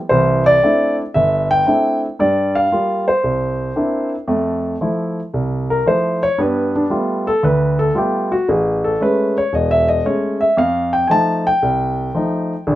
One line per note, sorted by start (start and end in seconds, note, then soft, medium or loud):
0.09 0.56 C2 medium
0.09 0.56 E3 medium
0.09 0.43 C5 medium
0.46 0.95 D5 medium
0.63 1.00 A3 soft
0.63 1.01 C4 soft
0.63 1.01 D4 soft
0.63 1.01 E4 medium
1.14 1.61 G1 medium
1.14 1.48 E5 medium
1.51 1.99 G5 loud
1.67 2.04 A3 soft
1.67 2.04 C4 soft
1.67 2.05 D4 soft
1.67 2.05 E4 medium
2.19 2.65 G2 medium
2.19 2.65 G3 medium
2.19 2.57 D5 medium
2.55 3.04 F5 medium
2.72 3.09 G3 medium
2.72 3.09 A#3 soft
2.72 3.10 F4 medium
3.08 4.08 C5 medium
3.24 3.69 C2 medium
3.76 4.14 A#3 soft
3.76 4.14 C4 soft
3.76 4.14 D4 soft
3.76 4.14 E4 medium
4.28 4.74 F2 medium
4.28 4.74 A3 medium
4.81 5.19 F3 medium
4.81 5.19 A3 soft
4.81 5.19 E4 medium
5.34 5.79 C2 medium
5.70 5.86 A#4 medium
5.86 6.24 F3 soft
5.86 6.24 A3 soft
5.86 6.24 E4 medium
5.86 6.22 C5 medium
6.23 6.38 C#5 medium
6.38 6.84 G2 medium
6.38 6.84 B3 medium
6.38 6.75 B4 medium
6.76 6.91 D4 medium
6.90 7.28 G3 medium
6.90 7.28 A3 soft
6.90 7.28 B3 soft
6.90 7.28 F4 medium
7.27 7.43 A4 medium
7.43 7.89 D2 medium
7.43 7.79 B4 medium
7.79 7.95 A4 medium
7.94 8.33 G3 medium
7.94 8.33 A3 soft
7.94 8.33 B3 soft
7.94 8.33 F4 medium
7.94 8.32 G4 medium
8.32 8.47 F#4 medium
8.49 8.94 A1 medium
8.49 8.84 G#4 medium
8.84 9.00 A4 medium
9.01 9.38 G#3 medium
9.01 9.38 A3 medium
9.01 9.38 C#4 medium
9.01 9.36 B4 medium
9.38 9.53 C#5 medium
9.53 9.98 E1 medium
9.53 9.70 D#5 medium
9.71 9.87 E5 medium
9.88 10.05 D#5 medium
10.05 10.43 G#3 soft
10.05 10.43 A3 soft
10.05 10.43 C#4 medium
10.05 10.40 C#5 medium
10.41 10.57 E5 medium
10.57 11.03 F2 medium
10.57 10.93 F5 medium
10.93 11.09 G5 medium
11.08 11.47 F3 medium
11.08 11.48 A3 soft
11.08 11.48 D#4 medium
11.08 11.11 G#5 medium
11.08 11.46 A5 medium
11.47 12.63 G5 medium
11.62 12.08 C2 medium
12.15 12.52 F3 medium
12.15 12.53 A3 soft
12.15 12.53 D#4 medium
12.67 12.75 A#1 medium
12.67 12.75 D3 medium